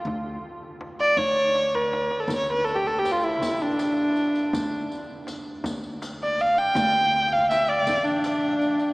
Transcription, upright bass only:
X:1
M:6/8
L:1/8
Q:3/8=54
K:none
V:1 name="Upright bass" clef=bass
D,, z2 D,,3 | D,,3 A,,,3 | D,, z2 D,,3 | D,,3 A,,,3 |]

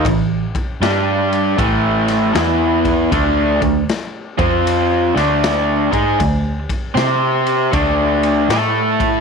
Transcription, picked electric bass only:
X:1
M:4/4
L:1/8
Q:"Swing" 1/4=78
K:Ddor
V:1 name="Picked electric bass" clef=bass
A,,, z G,,2 A,,,2 E,,2 | D,, D,, z F,,2 D,,2 ^G,, | D,, z C,2 D,,2 A,,2 |]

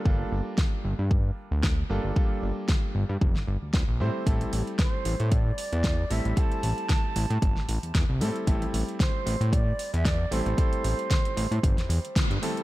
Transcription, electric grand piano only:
X:1
M:4/4
L:1/8
Q:"Swing 16ths" 1/4=114
K:Aphr
V:1 name="Electric grand piano"
[G,B,DFA]6- [G,B,DFA] [G,B,DFA] | [G,B,DFA]6- [G,B,DFA] [G,A,CEc] | [G,A,CEA]6- [G,A,CEA] [G,A,CEA] | [G,A,CEA]6- [G,A,CEA] [G,A,CEA] |
[G,A,CEA]6- [G,A,CEA] [G,A,CEA] | [G,A,CEA]6- [G,A,CEA] [G,A,CEA] |]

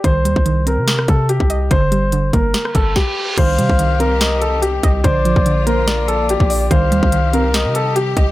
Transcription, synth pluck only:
X:1
M:4/4
L:1/8
Q:1/4=144
K:Cm
V:1 name="Synth pluck" clef=bass
E, G, E, C4 e | D, G, D, B,4- B, | E, G, E, C4 e | D, F, D, B,4 d |
E, G, E, C4 e |]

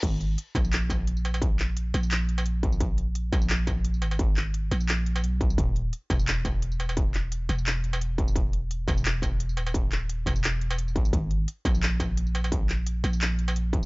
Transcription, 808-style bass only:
X:1
M:4/4
L:1/8
Q:"Swing 16ths" 1/4=173
K:D#phr
V:1 name="808-style bass" clef=bass
G,,,2 z A,,,4- A,,,- | A,,,3 A,,,4- A,,,- | A,,,3 A,,,4 G,,,- | G,,,3 A,,,3 B,,,2 |
D,,,2 z E,,,4- E,,,- | E,,,3 E,,,4- E,,,- | E,,,3 E,,,4 D,,,- | D,,,3 E,,,4 A,,, |
G,,,2 z A,,,4- A,,,- | A,,,3 A,,,4- A,,, |]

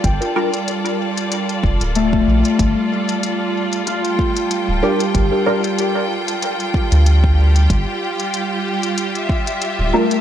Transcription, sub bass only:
X:1
M:4/4
L:1/16
Q:"Swing 16ths" 1/4=94
K:Cmix
V:1 name="Sub bass" clef=bass
G,,, z8 z F,,, D,,,3 B,,, z | G,,, z12 D,,, z2 | G,,, z8 z2 D,,4- D,, | G,,, z12 D,,, z2 |]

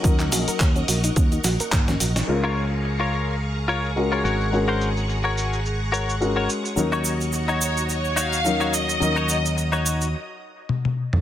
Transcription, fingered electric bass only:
X:1
M:4/4
L:1/8
Q:"Swing 16ths" 1/4=107
K:Ebm
V:1 name="Fingered electric bass" clef=bass
E,, B,,, E,, B,,, E,, B,,, E,, B,,, | D,,6- D,, A,,,- | A,,,6- A,,, z | E,,8 |
E,,4 z4 |]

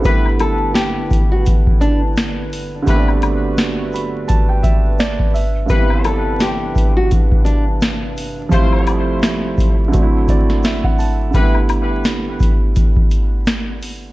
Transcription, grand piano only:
X:1
M:4/4
L:1/16
Q:"Swing 16ths" 1/4=85
K:G
V:1 name="Grand piano"
A z12 z3 | z6 b2 a g e2 d2 e2 | z16 | z8 z2 d2 e f a2 |
z16 |]
V:2 name="Grand piano"
[D,G,A,B,E]16 | [D,G,A,B,CD]12- [D,G,A,B,CD]2 z2 | [G,,D,G,B,CE]16 | [=F,G,A,CE]8 [D,^F,A,CDE]8 |
[D,G,A,B,E]16 |]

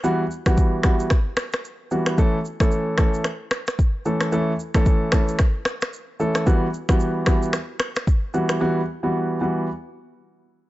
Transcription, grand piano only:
X:1
M:4/4
L:1/16
Q:"Swing 16ths" 1/4=112
K:Amix
V:1 name="Grand piano"
[E,G,B,F] z2 [E,G,B,F]3 [E,G,B,F]2 z6 [E,G,B,F]2 | [E,A,CA] z2 [E,A,CA]3 [E,A,CA]2 z6 [E,A,CA]2 | [E,A,CA] z2 [E,A,CA]3 [E,A,CA]2 z6 [E,A,CA]2 | [E,G,B,F] z2 [E,G,B,F]3 [E,G,B,F]2 z6 [E,G,B,F]2 |
[E,G,B,F] z2 [E,G,B,F]3 [E,G,B,F]2 z8 |]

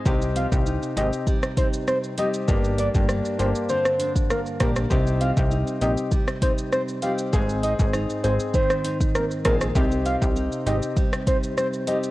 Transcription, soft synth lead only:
X:1
M:4/4
L:1/16
Q:1/4=99
K:Cm
V:1 name="Soft synth lead"
z2 f z3 e z3 c z c z e z | z2 d z3 c z c3 z B z B z | z2 f z3 e z3 c z c z f z | z2 e z3 c z c3 z B z B z |
z2 f z3 e z3 c z c z e z |]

